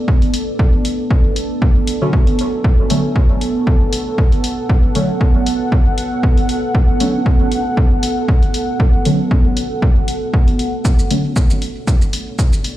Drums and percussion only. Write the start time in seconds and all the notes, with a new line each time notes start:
0.08 kick
0.22 open hi-hat
0.34 open hi-hat
0.59 kick
0.85 open hi-hat
1.11 kick
1.36 open hi-hat
1.62 kick
1.87 open hi-hat
2.13 kick
2.27 open hi-hat
2.39 open hi-hat
2.64 kick
2.90 open hi-hat
3.16 kick
3.41 open hi-hat
3.67 kick
3.93 open hi-hat
4.18 kick
4.32 open hi-hat
4.44 open hi-hat
4.69 kick
4.95 open hi-hat
5.21 kick
5.46 open hi-hat
5.72 kick
5.98 open hi-hat
6.23 kick
6.37 open hi-hat
6.49 open hi-hat
6.75 kick
7.00 open hi-hat
7.26 kick
7.52 open hi-hat
7.77 kick
8.03 open hi-hat
8.28 kick
8.43 open hi-hat
8.54 open hi-hat
8.80 kick
9.05 open hi-hat
9.31 kick
9.57 open hi-hat
9.82 kick
10.08 open hi-hat
10.34 kick
10.48 open hi-hat
10.59 open hi-hat
10.85 kick, shaker
10.99 shaker
11.11 open hi-hat
11.36 kick, shaker
11.50 shaker
11.62 open hi-hat
11.87 kick, shaker
12.02 shaker
12.13 open hi-hat
12.39 kick, shaker
12.53 open hi-hat, shaker
12.64 open hi-hat